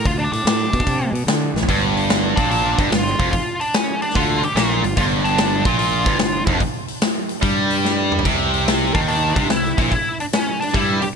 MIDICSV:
0, 0, Header, 1, 7, 480
1, 0, Start_track
1, 0, Tempo, 409277
1, 66, Time_signature, 4, 2, 24, 8
1, 7746, Tempo, 413508
1, 13028, End_track
2, 0, Start_track
2, 0, Title_t, "Lead electric guitar"
2, 0, Program_c, 0, 29
2, 74, Note_on_c, 0, 65, 101
2, 215, Note_off_c, 0, 65, 0
2, 219, Note_on_c, 0, 62, 89
2, 363, Note_off_c, 0, 62, 0
2, 377, Note_on_c, 0, 62, 98
2, 1310, Note_off_c, 0, 62, 0
2, 2768, Note_on_c, 0, 62, 63
2, 2924, Note_off_c, 0, 62, 0
2, 2938, Note_on_c, 0, 62, 79
2, 3407, Note_on_c, 0, 65, 93
2, 3434, Note_off_c, 0, 62, 0
2, 3873, Note_off_c, 0, 65, 0
2, 3887, Note_on_c, 0, 65, 90
2, 4223, Note_on_c, 0, 62, 78
2, 4228, Note_off_c, 0, 65, 0
2, 4385, Note_off_c, 0, 62, 0
2, 4402, Note_on_c, 0, 61, 83
2, 4709, Note_off_c, 0, 61, 0
2, 4714, Note_on_c, 0, 62, 75
2, 4870, Note_off_c, 0, 62, 0
2, 4875, Note_on_c, 0, 65, 96
2, 5170, Note_off_c, 0, 65, 0
2, 5211, Note_on_c, 0, 67, 99
2, 5354, Note_off_c, 0, 67, 0
2, 5359, Note_on_c, 0, 65, 94
2, 5816, Note_off_c, 0, 65, 0
2, 5830, Note_on_c, 0, 65, 107
2, 5916, Note_off_c, 0, 65, 0
2, 6148, Note_on_c, 0, 62, 81
2, 6594, Note_off_c, 0, 62, 0
2, 6635, Note_on_c, 0, 65, 84
2, 6767, Note_off_c, 0, 65, 0
2, 6781, Note_on_c, 0, 65, 82
2, 7699, Note_off_c, 0, 65, 0
2, 10464, Note_on_c, 0, 62, 69
2, 10522, Note_off_c, 0, 62, 0
2, 10618, Note_on_c, 0, 62, 79
2, 11105, Note_on_c, 0, 64, 75
2, 11114, Note_off_c, 0, 62, 0
2, 11431, Note_off_c, 0, 64, 0
2, 11445, Note_on_c, 0, 64, 74
2, 11561, Note_off_c, 0, 64, 0
2, 11575, Note_on_c, 0, 64, 93
2, 11880, Note_off_c, 0, 64, 0
2, 11922, Note_on_c, 0, 62, 82
2, 11980, Note_off_c, 0, 62, 0
2, 12075, Note_on_c, 0, 61, 84
2, 12384, Note_off_c, 0, 61, 0
2, 12388, Note_on_c, 0, 62, 72
2, 12550, Note_off_c, 0, 62, 0
2, 12551, Note_on_c, 0, 64, 85
2, 12869, Note_off_c, 0, 64, 0
2, 12873, Note_on_c, 0, 67, 99
2, 12932, Note_off_c, 0, 67, 0
2, 13028, End_track
3, 0, Start_track
3, 0, Title_t, "Distorted electric guitar"
3, 0, Program_c, 1, 30
3, 1980, Note_on_c, 1, 43, 95
3, 2774, Note_off_c, 1, 43, 0
3, 2783, Note_on_c, 1, 46, 97
3, 3254, Note_off_c, 1, 46, 0
3, 3268, Note_on_c, 1, 43, 97
3, 3418, Note_off_c, 1, 43, 0
3, 3431, Note_on_c, 1, 43, 62
3, 3685, Note_off_c, 1, 43, 0
3, 3749, Note_on_c, 1, 41, 91
3, 3898, Note_off_c, 1, 41, 0
3, 4880, Note_on_c, 1, 50, 92
3, 5185, Note_off_c, 1, 50, 0
3, 5353, Note_on_c, 1, 46, 98
3, 5662, Note_off_c, 1, 46, 0
3, 5672, Note_on_c, 1, 43, 66
3, 5794, Note_off_c, 1, 43, 0
3, 5834, Note_on_c, 1, 43, 105
3, 6624, Note_off_c, 1, 43, 0
3, 6642, Note_on_c, 1, 46, 81
3, 7106, Note_off_c, 1, 46, 0
3, 7110, Note_on_c, 1, 43, 100
3, 7250, Note_off_c, 1, 43, 0
3, 7264, Note_on_c, 1, 43, 61
3, 7525, Note_off_c, 1, 43, 0
3, 7584, Note_on_c, 1, 41, 88
3, 7739, Note_off_c, 1, 41, 0
3, 8692, Note_on_c, 1, 55, 102
3, 9649, Note_off_c, 1, 55, 0
3, 9658, Note_on_c, 1, 48, 92
3, 10452, Note_off_c, 1, 48, 0
3, 10460, Note_on_c, 1, 51, 89
3, 10932, Note_off_c, 1, 51, 0
3, 10939, Note_on_c, 1, 48, 103
3, 11089, Note_off_c, 1, 48, 0
3, 11102, Note_on_c, 1, 48, 66
3, 11361, Note_off_c, 1, 48, 0
3, 11430, Note_on_c, 1, 46, 93
3, 11579, Note_off_c, 1, 46, 0
3, 12545, Note_on_c, 1, 55, 90
3, 12862, Note_off_c, 1, 55, 0
3, 13028, End_track
4, 0, Start_track
4, 0, Title_t, "Fingered electric bass"
4, 0, Program_c, 2, 33
4, 62, Note_on_c, 2, 38, 104
4, 312, Note_off_c, 2, 38, 0
4, 375, Note_on_c, 2, 45, 82
4, 500, Note_off_c, 2, 45, 0
4, 528, Note_on_c, 2, 45, 90
4, 783, Note_off_c, 2, 45, 0
4, 861, Note_on_c, 2, 47, 100
4, 983, Note_off_c, 2, 47, 0
4, 1017, Note_on_c, 2, 48, 86
4, 1268, Note_off_c, 2, 48, 0
4, 1319, Note_on_c, 2, 47, 101
4, 1449, Note_off_c, 2, 47, 0
4, 1484, Note_on_c, 2, 50, 86
4, 1740, Note_off_c, 2, 50, 0
4, 1809, Note_on_c, 2, 33, 92
4, 1936, Note_off_c, 2, 33, 0
4, 1977, Note_on_c, 2, 31, 85
4, 2736, Note_off_c, 2, 31, 0
4, 2783, Note_on_c, 2, 34, 94
4, 3230, Note_off_c, 2, 34, 0
4, 3263, Note_on_c, 2, 31, 95
4, 3409, Note_off_c, 2, 31, 0
4, 3419, Note_on_c, 2, 31, 74
4, 3721, Note_off_c, 2, 31, 0
4, 3744, Note_on_c, 2, 29, 82
4, 3889, Note_off_c, 2, 29, 0
4, 4866, Note_on_c, 2, 38, 93
4, 5165, Note_off_c, 2, 38, 0
4, 5336, Note_on_c, 2, 34, 81
4, 5640, Note_off_c, 2, 34, 0
4, 5668, Note_on_c, 2, 31, 78
4, 5812, Note_off_c, 2, 31, 0
4, 5828, Note_on_c, 2, 31, 92
4, 6583, Note_off_c, 2, 31, 0
4, 6628, Note_on_c, 2, 34, 104
4, 7075, Note_off_c, 2, 34, 0
4, 7103, Note_on_c, 2, 31, 102
4, 7251, Note_off_c, 2, 31, 0
4, 7259, Note_on_c, 2, 31, 73
4, 7564, Note_off_c, 2, 31, 0
4, 7585, Note_on_c, 2, 29, 89
4, 7733, Note_off_c, 2, 29, 0
4, 8699, Note_on_c, 2, 43, 83
4, 9612, Note_off_c, 2, 43, 0
4, 9655, Note_on_c, 2, 36, 90
4, 10414, Note_off_c, 2, 36, 0
4, 10462, Note_on_c, 2, 39, 88
4, 10910, Note_off_c, 2, 39, 0
4, 10944, Note_on_c, 2, 36, 106
4, 11081, Note_off_c, 2, 36, 0
4, 11088, Note_on_c, 2, 36, 65
4, 11395, Note_off_c, 2, 36, 0
4, 11430, Note_on_c, 2, 34, 93
4, 11573, Note_off_c, 2, 34, 0
4, 12548, Note_on_c, 2, 43, 86
4, 12850, Note_off_c, 2, 43, 0
4, 13028, End_track
5, 0, Start_track
5, 0, Title_t, "Muted distorted electric guitar strokes"
5, 5207, Note_on_c, 9, 29, 54
5, 5325, Note_off_c, 9, 29, 0
5, 12877, Note_on_c, 9, 29, 59
5, 12993, Note_off_c, 9, 29, 0
5, 13028, End_track
6, 0, Start_track
6, 0, Title_t, "Muted fingered electric bass strokes"
6, 5179, Note_on_c, 9, 29, 41
6, 5296, Note_off_c, 9, 29, 0
6, 12862, Note_on_c, 9, 29, 42
6, 12978, Note_off_c, 9, 29, 0
6, 13028, End_track
7, 0, Start_track
7, 0, Title_t, "Drums"
7, 65, Note_on_c, 9, 36, 96
7, 67, Note_on_c, 9, 46, 69
7, 182, Note_off_c, 9, 36, 0
7, 184, Note_off_c, 9, 46, 0
7, 390, Note_on_c, 9, 46, 63
7, 507, Note_off_c, 9, 46, 0
7, 547, Note_on_c, 9, 46, 81
7, 554, Note_on_c, 9, 38, 125
7, 664, Note_off_c, 9, 46, 0
7, 671, Note_off_c, 9, 38, 0
7, 861, Note_on_c, 9, 36, 81
7, 862, Note_on_c, 9, 46, 55
7, 938, Note_off_c, 9, 36, 0
7, 938, Note_on_c, 9, 36, 86
7, 980, Note_off_c, 9, 46, 0
7, 1018, Note_off_c, 9, 36, 0
7, 1018, Note_on_c, 9, 36, 93
7, 1020, Note_on_c, 9, 46, 76
7, 1135, Note_off_c, 9, 36, 0
7, 1137, Note_off_c, 9, 46, 0
7, 1350, Note_on_c, 9, 46, 56
7, 1467, Note_off_c, 9, 46, 0
7, 1499, Note_on_c, 9, 46, 73
7, 1506, Note_on_c, 9, 38, 121
7, 1616, Note_off_c, 9, 46, 0
7, 1623, Note_off_c, 9, 38, 0
7, 1833, Note_on_c, 9, 38, 69
7, 1907, Note_on_c, 9, 43, 86
7, 1950, Note_off_c, 9, 38, 0
7, 1978, Note_on_c, 9, 36, 90
7, 1982, Note_on_c, 9, 46, 67
7, 2024, Note_off_c, 9, 43, 0
7, 2095, Note_off_c, 9, 36, 0
7, 2099, Note_off_c, 9, 46, 0
7, 2311, Note_on_c, 9, 46, 53
7, 2428, Note_off_c, 9, 46, 0
7, 2460, Note_on_c, 9, 46, 73
7, 2467, Note_on_c, 9, 38, 107
7, 2577, Note_off_c, 9, 46, 0
7, 2584, Note_off_c, 9, 38, 0
7, 2784, Note_on_c, 9, 36, 101
7, 2790, Note_on_c, 9, 46, 59
7, 2902, Note_off_c, 9, 36, 0
7, 2907, Note_off_c, 9, 46, 0
7, 2946, Note_on_c, 9, 46, 73
7, 3063, Note_off_c, 9, 46, 0
7, 3267, Note_on_c, 9, 36, 102
7, 3270, Note_on_c, 9, 46, 57
7, 3384, Note_off_c, 9, 36, 0
7, 3388, Note_off_c, 9, 46, 0
7, 3424, Note_on_c, 9, 46, 78
7, 3431, Note_on_c, 9, 38, 98
7, 3541, Note_off_c, 9, 46, 0
7, 3548, Note_off_c, 9, 38, 0
7, 3591, Note_on_c, 9, 38, 30
7, 3708, Note_off_c, 9, 38, 0
7, 3748, Note_on_c, 9, 36, 101
7, 3750, Note_on_c, 9, 46, 59
7, 3865, Note_off_c, 9, 36, 0
7, 3868, Note_off_c, 9, 46, 0
7, 3905, Note_on_c, 9, 36, 85
7, 3906, Note_on_c, 9, 46, 63
7, 4022, Note_off_c, 9, 36, 0
7, 4023, Note_off_c, 9, 46, 0
7, 4232, Note_on_c, 9, 46, 56
7, 4349, Note_off_c, 9, 46, 0
7, 4385, Note_on_c, 9, 46, 68
7, 4392, Note_on_c, 9, 38, 109
7, 4502, Note_off_c, 9, 46, 0
7, 4510, Note_off_c, 9, 38, 0
7, 4714, Note_on_c, 9, 46, 49
7, 4808, Note_on_c, 9, 38, 30
7, 4831, Note_off_c, 9, 46, 0
7, 4872, Note_on_c, 9, 36, 98
7, 4879, Note_on_c, 9, 46, 72
7, 4925, Note_off_c, 9, 38, 0
7, 4989, Note_off_c, 9, 36, 0
7, 4996, Note_off_c, 9, 46, 0
7, 5199, Note_on_c, 9, 46, 48
7, 5316, Note_off_c, 9, 46, 0
7, 5355, Note_on_c, 9, 46, 69
7, 5362, Note_on_c, 9, 38, 99
7, 5473, Note_off_c, 9, 46, 0
7, 5480, Note_off_c, 9, 38, 0
7, 5677, Note_on_c, 9, 46, 60
7, 5794, Note_off_c, 9, 46, 0
7, 5830, Note_on_c, 9, 36, 83
7, 5831, Note_on_c, 9, 46, 67
7, 5947, Note_off_c, 9, 36, 0
7, 5948, Note_off_c, 9, 46, 0
7, 6158, Note_on_c, 9, 46, 51
7, 6276, Note_off_c, 9, 46, 0
7, 6310, Note_on_c, 9, 46, 71
7, 6317, Note_on_c, 9, 38, 113
7, 6427, Note_off_c, 9, 46, 0
7, 6434, Note_off_c, 9, 38, 0
7, 6630, Note_on_c, 9, 36, 110
7, 6633, Note_on_c, 9, 46, 54
7, 6748, Note_off_c, 9, 36, 0
7, 6750, Note_off_c, 9, 46, 0
7, 6787, Note_on_c, 9, 46, 77
7, 6905, Note_off_c, 9, 46, 0
7, 7108, Note_on_c, 9, 36, 110
7, 7111, Note_on_c, 9, 46, 59
7, 7226, Note_off_c, 9, 36, 0
7, 7228, Note_off_c, 9, 46, 0
7, 7260, Note_on_c, 9, 46, 78
7, 7267, Note_on_c, 9, 38, 104
7, 7377, Note_off_c, 9, 46, 0
7, 7384, Note_off_c, 9, 38, 0
7, 7589, Note_on_c, 9, 36, 106
7, 7595, Note_on_c, 9, 46, 54
7, 7706, Note_off_c, 9, 36, 0
7, 7712, Note_off_c, 9, 46, 0
7, 7743, Note_on_c, 9, 46, 66
7, 7745, Note_on_c, 9, 36, 88
7, 7859, Note_off_c, 9, 46, 0
7, 7861, Note_off_c, 9, 36, 0
7, 8067, Note_on_c, 9, 46, 57
7, 8183, Note_off_c, 9, 46, 0
7, 8221, Note_on_c, 9, 46, 78
7, 8228, Note_on_c, 9, 38, 117
7, 8337, Note_off_c, 9, 46, 0
7, 8344, Note_off_c, 9, 38, 0
7, 8542, Note_on_c, 9, 46, 52
7, 8658, Note_off_c, 9, 46, 0
7, 8701, Note_on_c, 9, 36, 106
7, 8702, Note_on_c, 9, 46, 66
7, 8817, Note_off_c, 9, 36, 0
7, 8818, Note_off_c, 9, 46, 0
7, 9023, Note_on_c, 9, 46, 56
7, 9139, Note_off_c, 9, 46, 0
7, 9192, Note_on_c, 9, 38, 62
7, 9308, Note_off_c, 9, 38, 0
7, 9503, Note_on_c, 9, 45, 82
7, 9585, Note_on_c, 9, 43, 87
7, 9619, Note_off_c, 9, 45, 0
7, 9659, Note_on_c, 9, 36, 94
7, 9662, Note_on_c, 9, 46, 62
7, 9662, Note_on_c, 9, 49, 76
7, 9701, Note_off_c, 9, 43, 0
7, 9775, Note_off_c, 9, 36, 0
7, 9778, Note_off_c, 9, 46, 0
7, 9778, Note_off_c, 9, 49, 0
7, 9988, Note_on_c, 9, 46, 52
7, 10104, Note_off_c, 9, 46, 0
7, 10150, Note_on_c, 9, 46, 62
7, 10157, Note_on_c, 9, 38, 104
7, 10266, Note_off_c, 9, 46, 0
7, 10273, Note_off_c, 9, 38, 0
7, 10466, Note_on_c, 9, 36, 108
7, 10470, Note_on_c, 9, 46, 54
7, 10582, Note_off_c, 9, 36, 0
7, 10586, Note_off_c, 9, 46, 0
7, 10622, Note_on_c, 9, 46, 72
7, 10738, Note_off_c, 9, 46, 0
7, 10948, Note_on_c, 9, 36, 100
7, 10952, Note_on_c, 9, 46, 53
7, 11064, Note_off_c, 9, 36, 0
7, 11068, Note_off_c, 9, 46, 0
7, 11103, Note_on_c, 9, 46, 75
7, 11110, Note_on_c, 9, 38, 100
7, 11219, Note_off_c, 9, 46, 0
7, 11226, Note_off_c, 9, 38, 0
7, 11279, Note_on_c, 9, 38, 37
7, 11395, Note_off_c, 9, 38, 0
7, 11433, Note_on_c, 9, 36, 111
7, 11439, Note_on_c, 9, 46, 62
7, 11549, Note_off_c, 9, 36, 0
7, 11555, Note_off_c, 9, 46, 0
7, 11590, Note_on_c, 9, 36, 87
7, 11597, Note_on_c, 9, 46, 67
7, 11707, Note_off_c, 9, 36, 0
7, 11713, Note_off_c, 9, 46, 0
7, 11919, Note_on_c, 9, 46, 54
7, 12035, Note_off_c, 9, 46, 0
7, 12070, Note_on_c, 9, 46, 78
7, 12077, Note_on_c, 9, 38, 109
7, 12186, Note_off_c, 9, 46, 0
7, 12193, Note_off_c, 9, 38, 0
7, 12406, Note_on_c, 9, 46, 59
7, 12481, Note_on_c, 9, 38, 30
7, 12523, Note_off_c, 9, 46, 0
7, 12551, Note_on_c, 9, 36, 107
7, 12553, Note_on_c, 9, 46, 73
7, 12597, Note_off_c, 9, 38, 0
7, 12667, Note_off_c, 9, 36, 0
7, 12669, Note_off_c, 9, 46, 0
7, 12868, Note_on_c, 9, 46, 52
7, 12985, Note_off_c, 9, 46, 0
7, 13028, End_track
0, 0, End_of_file